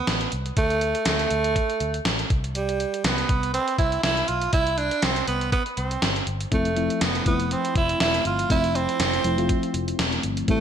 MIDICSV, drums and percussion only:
0, 0, Header, 1, 2, 480
1, 0, Start_track
1, 0, Tempo, 495868
1, 551, Time_signature, 4, 2, 24, 8
1, 10264, End_track
2, 0, Start_track
2, 0, Title_t, "Drums"
2, 71, Note_on_c, 9, 38, 82
2, 71, Note_on_c, 9, 42, 73
2, 168, Note_off_c, 9, 38, 0
2, 168, Note_off_c, 9, 42, 0
2, 201, Note_on_c, 9, 42, 42
2, 298, Note_off_c, 9, 42, 0
2, 309, Note_on_c, 9, 42, 67
2, 405, Note_off_c, 9, 42, 0
2, 442, Note_on_c, 9, 42, 44
2, 539, Note_off_c, 9, 42, 0
2, 549, Note_on_c, 9, 42, 69
2, 550, Note_on_c, 9, 36, 90
2, 645, Note_off_c, 9, 42, 0
2, 647, Note_off_c, 9, 36, 0
2, 681, Note_on_c, 9, 42, 40
2, 778, Note_off_c, 9, 42, 0
2, 787, Note_on_c, 9, 42, 54
2, 884, Note_off_c, 9, 42, 0
2, 918, Note_on_c, 9, 42, 42
2, 1015, Note_off_c, 9, 42, 0
2, 1021, Note_on_c, 9, 42, 88
2, 1023, Note_on_c, 9, 38, 103
2, 1117, Note_off_c, 9, 42, 0
2, 1120, Note_off_c, 9, 38, 0
2, 1155, Note_on_c, 9, 42, 45
2, 1252, Note_off_c, 9, 42, 0
2, 1263, Note_on_c, 9, 42, 61
2, 1360, Note_off_c, 9, 42, 0
2, 1398, Note_on_c, 9, 42, 47
2, 1494, Note_off_c, 9, 42, 0
2, 1508, Note_on_c, 9, 36, 82
2, 1511, Note_on_c, 9, 42, 76
2, 1605, Note_off_c, 9, 36, 0
2, 1608, Note_off_c, 9, 42, 0
2, 1642, Note_on_c, 9, 42, 47
2, 1739, Note_off_c, 9, 42, 0
2, 1746, Note_on_c, 9, 42, 58
2, 1843, Note_off_c, 9, 42, 0
2, 1879, Note_on_c, 9, 42, 50
2, 1976, Note_off_c, 9, 42, 0
2, 1986, Note_on_c, 9, 38, 85
2, 1986, Note_on_c, 9, 42, 73
2, 2083, Note_off_c, 9, 38, 0
2, 2083, Note_off_c, 9, 42, 0
2, 2121, Note_on_c, 9, 42, 47
2, 2217, Note_off_c, 9, 42, 0
2, 2229, Note_on_c, 9, 36, 92
2, 2229, Note_on_c, 9, 42, 68
2, 2326, Note_off_c, 9, 36, 0
2, 2326, Note_off_c, 9, 42, 0
2, 2363, Note_on_c, 9, 42, 43
2, 2460, Note_off_c, 9, 42, 0
2, 2469, Note_on_c, 9, 42, 72
2, 2566, Note_off_c, 9, 42, 0
2, 2602, Note_on_c, 9, 42, 39
2, 2699, Note_off_c, 9, 42, 0
2, 2711, Note_on_c, 9, 42, 49
2, 2807, Note_off_c, 9, 42, 0
2, 2845, Note_on_c, 9, 42, 42
2, 2941, Note_off_c, 9, 42, 0
2, 2946, Note_on_c, 9, 42, 86
2, 2949, Note_on_c, 9, 38, 105
2, 3043, Note_off_c, 9, 42, 0
2, 3046, Note_off_c, 9, 38, 0
2, 3079, Note_on_c, 9, 42, 50
2, 3176, Note_off_c, 9, 42, 0
2, 3187, Note_on_c, 9, 36, 81
2, 3187, Note_on_c, 9, 42, 68
2, 3283, Note_off_c, 9, 36, 0
2, 3284, Note_off_c, 9, 42, 0
2, 3322, Note_on_c, 9, 42, 46
2, 3419, Note_off_c, 9, 42, 0
2, 3427, Note_on_c, 9, 42, 74
2, 3524, Note_off_c, 9, 42, 0
2, 3559, Note_on_c, 9, 42, 49
2, 3656, Note_off_c, 9, 42, 0
2, 3664, Note_on_c, 9, 36, 80
2, 3664, Note_on_c, 9, 42, 56
2, 3761, Note_off_c, 9, 36, 0
2, 3761, Note_off_c, 9, 42, 0
2, 3797, Note_on_c, 9, 42, 47
2, 3893, Note_off_c, 9, 42, 0
2, 3906, Note_on_c, 9, 38, 86
2, 3906, Note_on_c, 9, 42, 75
2, 4002, Note_off_c, 9, 38, 0
2, 4002, Note_off_c, 9, 42, 0
2, 4039, Note_on_c, 9, 42, 45
2, 4136, Note_off_c, 9, 42, 0
2, 4143, Note_on_c, 9, 42, 69
2, 4240, Note_off_c, 9, 42, 0
2, 4274, Note_on_c, 9, 42, 43
2, 4371, Note_off_c, 9, 42, 0
2, 4382, Note_on_c, 9, 42, 73
2, 4385, Note_on_c, 9, 36, 92
2, 4479, Note_off_c, 9, 42, 0
2, 4482, Note_off_c, 9, 36, 0
2, 4517, Note_on_c, 9, 42, 40
2, 4614, Note_off_c, 9, 42, 0
2, 4624, Note_on_c, 9, 42, 53
2, 4720, Note_off_c, 9, 42, 0
2, 4756, Note_on_c, 9, 42, 42
2, 4853, Note_off_c, 9, 42, 0
2, 4863, Note_on_c, 9, 42, 85
2, 4866, Note_on_c, 9, 38, 104
2, 4960, Note_off_c, 9, 42, 0
2, 4962, Note_off_c, 9, 38, 0
2, 4998, Note_on_c, 9, 42, 47
2, 5094, Note_off_c, 9, 42, 0
2, 5107, Note_on_c, 9, 42, 69
2, 5203, Note_off_c, 9, 42, 0
2, 5240, Note_on_c, 9, 42, 46
2, 5337, Note_off_c, 9, 42, 0
2, 5347, Note_on_c, 9, 36, 89
2, 5348, Note_on_c, 9, 42, 73
2, 5443, Note_off_c, 9, 36, 0
2, 5445, Note_off_c, 9, 42, 0
2, 5479, Note_on_c, 9, 42, 46
2, 5575, Note_off_c, 9, 42, 0
2, 5587, Note_on_c, 9, 42, 60
2, 5684, Note_off_c, 9, 42, 0
2, 5722, Note_on_c, 9, 42, 51
2, 5818, Note_off_c, 9, 42, 0
2, 5829, Note_on_c, 9, 38, 88
2, 5829, Note_on_c, 9, 42, 73
2, 5926, Note_off_c, 9, 38, 0
2, 5926, Note_off_c, 9, 42, 0
2, 5964, Note_on_c, 9, 42, 44
2, 6061, Note_off_c, 9, 42, 0
2, 6069, Note_on_c, 9, 42, 71
2, 6165, Note_off_c, 9, 42, 0
2, 6200, Note_on_c, 9, 42, 44
2, 6297, Note_off_c, 9, 42, 0
2, 6309, Note_on_c, 9, 36, 84
2, 6310, Note_on_c, 9, 42, 70
2, 6405, Note_off_c, 9, 36, 0
2, 6407, Note_off_c, 9, 42, 0
2, 6440, Note_on_c, 9, 42, 41
2, 6536, Note_off_c, 9, 42, 0
2, 6549, Note_on_c, 9, 42, 52
2, 6646, Note_off_c, 9, 42, 0
2, 6682, Note_on_c, 9, 42, 44
2, 6779, Note_off_c, 9, 42, 0
2, 6787, Note_on_c, 9, 42, 85
2, 6790, Note_on_c, 9, 38, 103
2, 6884, Note_off_c, 9, 42, 0
2, 6887, Note_off_c, 9, 38, 0
2, 6924, Note_on_c, 9, 42, 48
2, 7021, Note_off_c, 9, 42, 0
2, 7028, Note_on_c, 9, 42, 70
2, 7029, Note_on_c, 9, 36, 86
2, 7125, Note_off_c, 9, 42, 0
2, 7126, Note_off_c, 9, 36, 0
2, 7160, Note_on_c, 9, 42, 46
2, 7256, Note_off_c, 9, 42, 0
2, 7271, Note_on_c, 9, 42, 73
2, 7367, Note_off_c, 9, 42, 0
2, 7403, Note_on_c, 9, 42, 47
2, 7499, Note_off_c, 9, 42, 0
2, 7507, Note_on_c, 9, 36, 81
2, 7507, Note_on_c, 9, 42, 60
2, 7604, Note_off_c, 9, 36, 0
2, 7604, Note_off_c, 9, 42, 0
2, 7641, Note_on_c, 9, 42, 48
2, 7737, Note_off_c, 9, 42, 0
2, 7747, Note_on_c, 9, 38, 96
2, 7747, Note_on_c, 9, 42, 73
2, 7844, Note_off_c, 9, 38, 0
2, 7844, Note_off_c, 9, 42, 0
2, 7883, Note_on_c, 9, 42, 47
2, 7979, Note_off_c, 9, 42, 0
2, 7988, Note_on_c, 9, 42, 72
2, 8084, Note_off_c, 9, 42, 0
2, 8122, Note_on_c, 9, 42, 46
2, 8219, Note_off_c, 9, 42, 0
2, 8229, Note_on_c, 9, 36, 90
2, 8231, Note_on_c, 9, 42, 78
2, 8326, Note_off_c, 9, 36, 0
2, 8328, Note_off_c, 9, 42, 0
2, 8362, Note_on_c, 9, 42, 40
2, 8459, Note_off_c, 9, 42, 0
2, 8473, Note_on_c, 9, 42, 55
2, 8570, Note_off_c, 9, 42, 0
2, 8604, Note_on_c, 9, 42, 44
2, 8701, Note_off_c, 9, 42, 0
2, 8709, Note_on_c, 9, 42, 94
2, 8711, Note_on_c, 9, 38, 104
2, 8805, Note_off_c, 9, 42, 0
2, 8808, Note_off_c, 9, 38, 0
2, 8842, Note_on_c, 9, 42, 47
2, 8939, Note_off_c, 9, 42, 0
2, 8948, Note_on_c, 9, 42, 67
2, 9044, Note_off_c, 9, 42, 0
2, 9082, Note_on_c, 9, 42, 47
2, 9179, Note_off_c, 9, 42, 0
2, 9188, Note_on_c, 9, 36, 85
2, 9190, Note_on_c, 9, 42, 80
2, 9285, Note_off_c, 9, 36, 0
2, 9287, Note_off_c, 9, 42, 0
2, 9323, Note_on_c, 9, 42, 48
2, 9420, Note_off_c, 9, 42, 0
2, 9429, Note_on_c, 9, 42, 61
2, 9526, Note_off_c, 9, 42, 0
2, 9563, Note_on_c, 9, 42, 47
2, 9660, Note_off_c, 9, 42, 0
2, 9670, Note_on_c, 9, 38, 91
2, 9670, Note_on_c, 9, 42, 79
2, 9767, Note_off_c, 9, 38, 0
2, 9767, Note_off_c, 9, 42, 0
2, 9801, Note_on_c, 9, 42, 46
2, 9898, Note_off_c, 9, 42, 0
2, 9907, Note_on_c, 9, 42, 75
2, 10004, Note_off_c, 9, 42, 0
2, 10039, Note_on_c, 9, 42, 48
2, 10135, Note_off_c, 9, 42, 0
2, 10145, Note_on_c, 9, 42, 74
2, 10146, Note_on_c, 9, 36, 83
2, 10242, Note_off_c, 9, 42, 0
2, 10243, Note_off_c, 9, 36, 0
2, 10264, End_track
0, 0, End_of_file